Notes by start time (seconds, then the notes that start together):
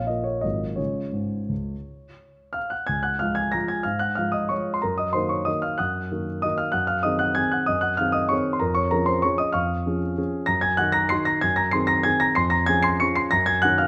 Already playing: A#1 F5
0.07 A#3 F4 D#5
0.24 C#5
0.41 G#1 F#3 A#3 F4 D#5
0.76 C#3 G#3 F4 C#5
1.13 G#2
1.49 C#2
2.53 F5 F6
2.70 F#5 F#6
2.87 C#2 G#5 G#6
3.03 F#5 F#6
3.19 F3 G#3 F4 F5 F6
3.35 G#5 G#6
3.52 F3 G#3 F4 A#5 A#6
3.68 G#5 G#6
3.83 G#2 F5 F6
3.99 F#5 F#6
4.15 F3 G#3 F4 F5 F6
4.32 D#5 D#6
4.49 F3 G#3 F4 C#5 C#6
4.74 C6
4.82 F#2 A#4 A#5
4.98 D#5 D#6
5.13 D#3 A#3 F#4 C5 C6
5.29 C#5 C#6
5.45 D#3 A#3 F#4 D#5 D#6
5.62 F5 F6
5.78 F#2 F#5 D#6 F#6
6.11 D#3 A#3 F#4
6.42 D#3 A#3 F#4 D#5 D#6
6.58 F5 F6
6.72 F#2 F#5 F#6
6.87 F5 F6
7.03 D#3 C4 G#4 D#5 D#6
7.19 F#5 F#6
7.35 D#3 C4 G#4 G#5 G#6
7.52 F#5 F#6
7.66 F#2 D#5 D#6
7.81 F#5 F#6
7.97 D#3 C4 G#4 F5 F6
8.12 D#5 D#6
8.29 D#3 C4 G#4 C#5 C#6
8.53 C6
8.60 F2 A#4 A#5
8.75 C#5 C#6
8.91 F3 C#4 G#4 A#4 A#5
9.06 C5 C6
9.22 F3 C#4 G#4 C#5 C#6
9.38 D#5 D#6
9.53 F2 F5 C#6 F6
9.86 F3 C#4 G#4
10.17 F3 C#4 G#4
10.46 F#2 A#5 A#6
10.61 G#5 G#6
10.77 D#3 D#4 F#4 F#5 F#6
10.92 A#5 A#6
11.09 D#3 D#4 F#4 C6 C7
11.25 A#5 A#6
11.41 F#2 G#5 G#6
11.56 A#5 A#6
11.71 D#3 C4 G#4 C6 C7
11.87 A#5 A#6
12.03 D#3 C4 G#4 G#5 G#6
12.20 A#5 A#6
12.35 F2 C6 C7
12.50 A#5 A#6
12.66 F3 C#4 G#4 G#5 G#6
12.83 C6 C7
13.00 F3 C#4 G#4 C#6 C#7
13.16 C6 C7
13.31 F#2 A#5 A#6
13.46 G#5 G#6
13.62 D#3 C#4 F#4 F#5 F#6
13.78 F5 F6